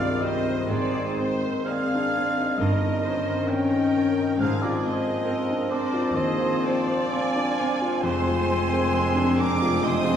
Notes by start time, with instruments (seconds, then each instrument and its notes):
Already playing: grand piano G2 F3 G3 D#4, bassoon D#3, french horn section D#3 C4, clarinet C4, viola section D5, flute D5, violin section F5, cor anglais F5
0.00 grand piano G#3
0.21 grand piano G3, flute C5, viola section C5, cor anglais D#5, violin section D#5
0.45 grand piano D#4
0.67 tuba G#1, double bass section G#1, cello section G#2, grand piano G#2, flute G#4, cor anglais C5, violin section C5, viola section D5
0.93 grand piano D#4
1.17 grand piano C4, viola section C5
1.45 grand piano A#3
1.66 violin section D#4 F5, viola section G#4, flute D5, cor anglais F5
1.70 grand piano C4
1.95 grand piano D4
2.18 grand piano C4
2.38 grand piano D#4
2.58 tuba G1, double bass section G1, cello section G2, grand piano G2, bassoon D#3, french horn section D#3 C#4, clarinet C#4, viola section A#4, flute A#4, cor anglais D#5, violin section D#5
2.83 grand piano D#4
3.04 viola section C5
3.08 grand piano C#4
3.32 grand piano C4
3.48 violin section C#4 G5, viola section A#4, flute D#5, cor anglais G5
3.53 grand piano C#4
3.76 grand piano D#4
3.97 grand piano C#4
4.20 grand piano D#4
4.38 tuba G#1, double bass section G#1, cello section G#2, bassoon F3, french horn section F3 C4, clarinet C4, viola section G#4, flute C5, violin section F5, cor anglais F5
4.43 grand piano G#2
4.61 grand piano F4, flute A#4, violin section D5, cor anglais D5
4.84 grand piano C4, flute C5, violin section D#5, cor anglais D#5
5.07 grand piano A#3
5.27 violin section C4, grand piano C4, viola section A#4
5.51 grand piano D4
5.71 grand piano C4, flute A#4, viola section C5, cor anglais D5, violin section D5
5.94 grand piano F4
6.14 cello section D#2, double bass section D#2, tuba D#2, grand piano D#3, flute G#4, violin section C5, cor anglais C5, viola section D#5
6.39 grand piano F4
6.63 grand piano C4, viola section D5
6.90 grand piano A#3
7.09 violin section C4 G#5, grand piano C4, cor anglais G#5
7.14 flute F5
7.36 grand piano D4
7.61 grand piano C4
7.82 grand piano F4
8.02 double bass section F1, tuba F1, grand piano F2, cello section F2, bassoon G#3, french horn section G#3 C4, clarinet C4, violin section G#4 C6, cor anglais C5, viola section C5, flute G#5
8.27 grand piano F4
8.49 grand piano C4
8.72 grand piano A#3
8.94 grand piano C4, viola section G#4
9.15 grand piano D4
9.38 grand piano C4, viola section A#4, cor anglais D5, flute A#5, violin section D6
9.62 grand piano F4
9.83 grand piano C3, viola section C5, cor anglais D#5, flute C6, violin section D#6
10.05 grand piano F4